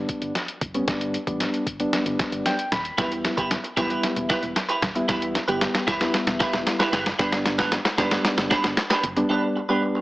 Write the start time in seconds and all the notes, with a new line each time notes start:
Already playing: G3 B3 D4
0.09 kick, closed hi-hat
0.22 G1, closed hi-hat
0.35 snare, closed hi-hat
0.48 closed hi-hat
0.61 F#1, kick, closed hi-hat
0.74 G3 B3 C#4, closed hi-hat
0.87 G1 G3 B3 D4, kick, snare, closed hi-hat
1.01 closed hi-hat
1.14 closed hi-hat
1.27 A1 G3 B3 D4, kick, closed hi-hat
1.40 snare, closed hi-hat
1.54 closed hi-hat
1.67 G1, kick, closed hi-hat
1.80 G3 B3 D4, closed hi-hat
1.93 snare, closed hi-hat
2.06 G1, closed hi-hat
2.19 kick, snare, closed hi-hat
2.32 G1, closed hi-hat
2.46 G5, snare, closed hi-hat
2.59 closed hi-hat
2.72 D#1 B5, snare, closed hi-hat
2.85 closed hi-hat
2.98 E1 G3 B3 E4 G4 B4, kick, snare, closed hi-hat
3.11 muted clean electric guitar stroke, closed hi-hat
3.24 muted clean electric guitar stroke, snare, closed hi-hat
3.37 G1 E4 G4 B4, kick, closed hi-hat
3.50 muted clean electric guitar stroke, snare, closed hi-hat
3.64 muted clean electric guitar stroke, closed hi-hat
3.77 E1 G3 B3 E4 G4 B4, kick, snare, closed hi-hat
3.90 E4 G4 B4, closed hi-hat
4.03 snare, closed hi-hat
4.16 E1, muted clean electric guitar stroke, closed hi-hat
4.29 E4 G4 B4, kick, snare, closed hi-hat
4.43 E1, muted clean electric guitar stroke, closed hi-hat
4.56 muted clean electric guitar stroke, snare, closed hi-hat
4.69 E4 G4 B4, closed hi-hat
4.82 D#1, muted clean electric guitar stroke, kick, snare, closed hi-hat
4.95 G3 B3 E4, muted clean electric guitar stroke, closed hi-hat
5.08 E1 G3 B3 E4 G4 B4, kick, snare, closed hi-hat
5.22 muted clean electric guitar stroke, closed hi-hat
5.35 muted clean electric guitar stroke, snare, closed hi-hat
5.48 G1 G3 B3 E4 G4 B4, closed hi-hat
5.61 muted clean electric guitar stroke, snare, closed hi-hat
5.74 muted clean electric guitar stroke, snare, closed hi-hat
5.87 E1 E4 G4 B4, kick, snare, closed hi-hat
6.00 G3 B3 E4 G4 B4, snare, closed hi-hat
6.14 snare, closed hi-hat
6.27 E1, muted clean electric guitar stroke, snare, closed hi-hat
6.40 E4 G4 B4, kick, snare, closed hi-hat
6.53 E1, muted clean electric guitar stroke, snare, closed hi-hat
6.66 muted clean electric guitar stroke, snare, closed hi-hat
6.79 E4 G4 B4, snare, closed hi-hat
6.92 F#1 E4 G4 B4, snare, closed hi-hat
7.06 muted clean electric guitar stroke, snare, closed hi-hat
7.19 G1 G3 B3 D4 G4 B4, kick, snare, closed hi-hat
7.32 muted clean electric guitar stroke, snare, closed hi-hat
7.45 muted clean electric guitar stroke, snare, closed hi-hat
7.58 A1 D4 G4 B4, kick, snare, closed hi-hat
7.72 muted clean electric guitar stroke, snare, closed hi-hat
7.85 muted clean electric guitar stroke, snare, closed hi-hat
7.98 G1 G3 B3 D4 G4 B4, kick, snare, closed hi-hat
8.11 D4 G4 B4, snare, closed hi-hat
8.25 snare, closed hi-hat
8.38 G1, muted clean electric guitar stroke, snare, closed hi-hat
8.50 D4 G4 B4, kick, snare, closed hi-hat
8.64 G1, muted clean electric guitar stroke, snare, closed hi-hat
8.77 muted clean electric guitar stroke, snare, closed hi-hat
8.90 D4 G4 B4, snare, closed hi-hat
9.03 F#1, muted clean electric guitar stroke, closed hi-hat
9.16 G3 B3 D4, muted clean electric guitar stroke, closed hi-hat
9.29 G3 B3 D4 G4 B4
9.43 muted clean electric guitar stroke
9.56 muted clean electric guitar stroke
9.69 G3 B3 D4 G4 B4
9.82 muted clean electric guitar stroke
9.95 muted clean electric guitar stroke